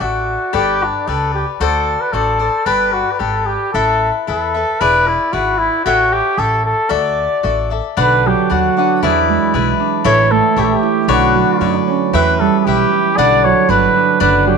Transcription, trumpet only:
0.03 0.55 F#4 medium
0.56 0.85 G4 medium
0.83 1.09 D4 medium
1.08 1.34 A4 medium
1.34 1.46 G4 medium
1.61 2.02 A4 medium
2.01 2.14 B4 medium
2.12 2.67 A4 medium
2.66 2.94 B4 medium
2.92 3.13 F#4 medium
3.12 3.21 B4 soft
3.19 3.47 A4 medium
3.46 3.73 G4 medium
3.73 4.11 A4 medium
4.28 4.82 A4 medium
4.80 5.09 B4 medium
5.07 5.34 E4 medium
5.33 5.60 F#4 medium
5.58 5.85 E4 medium
5.85 6.14 F#4 loud
6.13 6.40 G4 medium
6.38 6.64 A4 medium
6.65 6.92 A4 medium
6.90 7.71 D5 medium
8.00 8.28 B4 loud
8.27 8.54 G4 medium
8.52 9.02 F#4 medium
9.03 9.76 E4 medium
10.05 10.33 C#5 loud
10.31 10.60 A4 medium
10.58 10.63 G4 medium
10.58 10.74 A4 medium
10.72 11.09 G4 medium
11.11 11.84 F#4 medium
12.13 12.41 B4 medium
12.40 12.60 A4 medium
12.60 12.67 A4 medium
12.65 13.18 G4 medium
13.16 13.45 D5 loud
13.44 13.71 C#5 medium
13.69 14.20 B4 loud
14.22 14.45 B4 medium
14.47 14.58 G4 medium

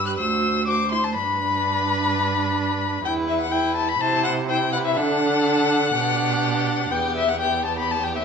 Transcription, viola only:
0.00 0.21 G4 medium
0.19 0.67 F#4 medium
0.67 0.75 F#4 medium
0.91 0.99 E4 medium
1.15 3.00 D4 medium
3.04 3.51 E4 medium
3.52 3.99 E4 medium
4.00 4.47 E4 medium
4.48 4.99 E4 medium
4.97 5.94 D4 medium
5.95 6.93 D4 medium
6.91 7.39 B3 medium
7.40 8.25 B3 medium

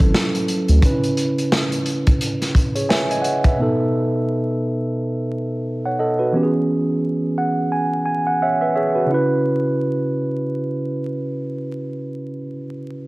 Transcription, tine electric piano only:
0.00 0.84 F#3 medium
0.00 0.83 C#4 medium
0.00 0.84 E4 medium
0.00 0.84 A4 medium
0.81 3.54 C#3 medium
0.81 3.54 C#4 medium
0.81 0.91 D#4 medium
0.86 2.53 B4 medium
0.91 3.58 E4 medium
2.75 2.89 G#4 medium
2.75 2.89 C#5 medium
2.89 3.09 B4 medium
2.89 3.09 E5 medium
2.89 3.09 G#5 medium
3.11 3.24 D#5 medium
3.11 3.24 G#5 medium
3.22 3.42 C#5 medium
3.22 3.42 F#5 medium
3.45 3.78 B4 medium
3.45 3.77 E5 medium
3.58 6.30 B2 medium
3.58 6.31 B3 medium
3.58 6.31 D#4 medium
3.62 5.29 A4 medium
5.85 5.99 C#5 medium
5.85 5.99 F#5 medium
5.99 6.19 A4 medium
5.99 6.19 D#5 medium
6.19 6.53 F#4 medium
6.19 6.52 B4 medium
6.33 9.05 E3 medium
6.33 9.06 B3 medium
6.33 9.07 C#4 medium
6.37 6.43 G4 medium
6.43 8.42 G#4 medium
7.38 7.70 F#5 medium
7.72 8.04 G#5 medium
8.06 8.25 G#5 medium
8.27 8.40 F#5 medium
8.42 8.61 C#5 medium
8.42 8.60 E5 medium
8.42 8.61 F#5 medium
8.61 8.75 B4 medium
8.61 8.74 E5 medium
8.75 8.95 G#4 medium
8.75 8.95 C#5 medium
8.75 9.07 E5 medium
8.95 9.28 F#4 medium
8.95 9.13 B4 medium
9.06 12.33 C#3 medium
9.06 12.36 C#4 medium
9.11 12.38 E4 medium
9.11 12.41 B4 medium

